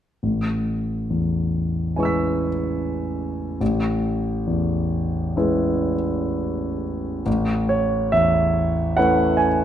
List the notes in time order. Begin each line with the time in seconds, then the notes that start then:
0.23 A1
1.10 E2
1.96 G#3 C#4 E4 B4 G#5 C#6
2.03 E6 B6
3.61 A1
4.47 E2
5.37 G#3 C#4 E4 B4
7.26 A1
7.69 C#5
8.12 E2 E5
8.97 A3 C#4 E4 B4 F#5
9.37 G#5